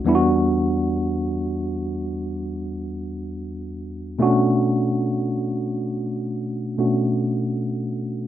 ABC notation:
X:1
M:4/4
L:1/8
Q:1/4=58
K:Bm
V:1 name="Tine electric piano"
[E,,G,B,DEF]8 | [B,,A,CDF]4- [B,,A,CDF] [B,,A,CDF]3 |]